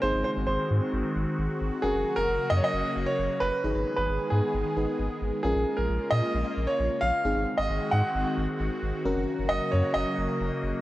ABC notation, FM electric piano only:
X:1
M:4/4
L:1/8
Q:1/4=133
K:Abdor
V:1 name="FM electric piano"
[=CEA]8 | [DGB]8 | [EAc]4- [EAc] [EAc]3 | [DFB]8 |
[=CEA]8 | [DGB]8 |]